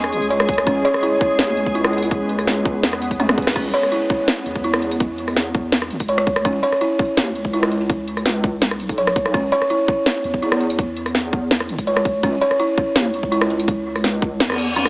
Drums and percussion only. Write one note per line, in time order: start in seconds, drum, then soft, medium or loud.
0.04 cross-stick medium
0.13 closed hi-hat medium
0.13 tambourine soft
0.22 tambourine soft
0.30 closed hi-hat medium
0.40 cross-stick medium
0.49 kick loud
0.49 closed hi-hat soft
0.53 closed hi-hat medium
0.58 cross-stick medium
0.67 kick loud
0.67 closed hi-hat medium
0.85 closed hi-hat medium
0.94 cross-stick soft
1.03 closed hi-hat medium
1.21 kick loud
1.21 closed hi-hat soft
1.39 snare loud
1.39 closed hi-hat medium
1.57 closed hi-hat medium
1.66 kick medium
1.75 closed hi-hat medium
1.84 cross-stick medium
1.93 closed hi-hat soft
1.98 closed hi-hat medium
2.03 tambourine medium
2.11 kick loud
2.11 closed hi-hat medium
2.29 closed hi-hat medium
2.39 cross-stick soft
2.39 tambourine soft
2.47 snare medium
2.47 closed hi-hat medium
2.65 kick loud
2.65 closed hi-hat soft
2.83 snare loud
2.83 closed hi-hat medium
2.93 cross-stick medium
3.02 closed hi-hat medium
3.02 tambourine soft
3.11 kick medium
3.11 tambourine soft
3.20 closed hi-hat medium
3.20 high tom medium
3.29 cross-stick medium
3.29 high tom medium
3.38 kick loud
3.38 closed hi-hat soft
3.42 closed hi-hat medium
3.47 cross-stick medium
3.47 snare medium
3.56 kick loud
3.56 closed hi-hat medium
3.56 crash loud
3.74 closed hi-hat medium
3.83 cross-stick soft
3.92 closed hi-hat medium
4.10 kick loud
4.10 closed hi-hat soft
4.28 snare loud
4.28 closed hi-hat medium
4.46 closed hi-hat medium
4.56 kick medium
4.64 closed hi-hat medium
4.74 cross-stick medium
4.82 closed hi-hat medium
4.92 tambourine medium
5.00 kick loud
5.00 closed hi-hat medium
5.18 closed hi-hat medium
5.28 cross-stick soft
5.28 tambourine soft
5.37 snare medium
5.37 closed hi-hat medium
5.55 kick loud
5.55 closed hi-hat soft
5.72 snare loud
5.72 closed hi-hat medium
5.82 cross-stick medium
5.91 closed hi-hat medium
5.91 tambourine soft
6.00 kick medium
6.00 tambourine soft
6.08 closed hi-hat medium
6.18 cross-stick medium
6.27 kick loud
6.27 closed hi-hat medium
6.36 cross-stick medium
6.45 kick loud
6.45 closed hi-hat medium
6.63 closed hi-hat medium
6.72 cross-stick soft
6.81 closed hi-hat medium
6.99 kick loud
6.99 closed hi-hat soft
7.02 closed hi-hat soft
7.05 closed hi-hat soft
7.17 snare loud
7.17 closed hi-hat medium
7.35 closed hi-hat medium
7.45 kick medium
7.54 closed hi-hat medium
7.63 cross-stick medium
7.72 closed hi-hat medium
7.81 tambourine medium
7.90 kick loud
7.90 closed hi-hat medium
8.08 closed hi-hat medium
8.17 cross-stick soft
8.17 tambourine soft
8.26 snare medium
8.26 closed hi-hat medium
8.44 kick loud
8.44 closed hi-hat soft
8.62 snare loud
8.62 closed hi-hat medium
8.71 cross-stick medium
8.80 closed hi-hat medium
8.80 tambourine soft
8.89 kick medium
8.89 tambourine soft
8.98 closed hi-hat medium
9.07 cross-stick medium
9.16 kick loud
9.16 closed hi-hat medium
9.26 cross-stick medium
9.34 kick loud
9.34 closed hi-hat medium
9.52 closed hi-hat medium
9.62 cross-stick soft
9.70 closed hi-hat medium
9.88 kick loud
9.88 closed hi-hat soft
10.06 snare loud
10.06 closed hi-hat medium
10.24 closed hi-hat medium
10.34 kick medium
10.42 closed hi-hat medium
10.52 cross-stick medium
10.60 closed hi-hat medium
10.70 tambourine medium
10.79 kick loud
10.79 closed hi-hat medium
10.97 closed hi-hat medium
11.06 cross-stick soft
11.06 tambourine soft
11.15 snare medium
11.15 closed hi-hat medium
11.33 kick loud
11.33 closed hi-hat soft
11.51 snare loud
11.51 closed hi-hat medium
11.60 cross-stick medium
11.69 closed hi-hat medium
11.69 tambourine soft
11.78 kick medium
11.78 tambourine soft
11.87 closed hi-hat medium
11.97 cross-stick medium
12.05 kick loud
12.05 closed hi-hat medium
12.23 kick loud
12.23 closed hi-hat medium
12.41 closed hi-hat medium
12.51 cross-stick soft
12.60 closed hi-hat medium
12.78 kick loud
12.78 closed hi-hat soft
12.96 snare loud
12.96 closed hi-hat medium
13.14 closed hi-hat medium
13.23 kick medium
13.32 closed hi-hat medium
13.41 cross-stick medium
13.50 closed hi-hat medium
13.60 tambourine medium
13.68 kick loud
13.68 closed hi-hat medium
13.96 cross-stick soft
13.96 tambourine soft
14.04 snare medium
14.04 closed hi-hat medium
14.22 kick loud
14.22 closed hi-hat soft
14.40 snare loud
14.40 closed hi-hat medium
14.50 cross-stick medium
14.52 cross-stick medium
14.54 cross-stick soft
14.56 cross-stick soft
14.56 closed hi-hat medium
14.56 tambourine soft
14.68 tambourine soft
14.76 closed hi-hat medium
14.85 cross-stick medium
14.85 high tom medium